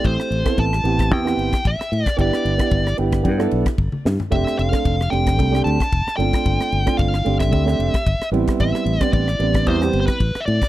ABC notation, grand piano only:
X:1
M:4/4
L:1/16
Q:"Swing 16ths" 1/4=112
K:Gmix
V:1 name="Grand piano"
[A,CEG]2 z [B,CEA]2 [EG] [B,CEG]2 [B,CEG] [B,CEG]2 [EG] z2 [EA] z | [B,DEG]3 [B,DEG]2 [EG] [B,DEG]2 [B,DEG] [B,DEA]2 z3 [EG] z | [A,CDG]3 [A,CDA]2 [DG] [A,CDG]2 [A,CDG] [A,CDG]2 [DG] z2 [A,CDF]2- | [A,CDF]2 z [A,CDF]2 [DE] [A,CDG]2 [A,CDG] [A,CDG]2 [DG] z2 [G,B,CE]2- |
[G,B,CE]2 z [G,B,CD]2 [CE] [G,B,CD]2 [G,B,CE] [G,B,CG]2 [CE] z2 [CE] z |]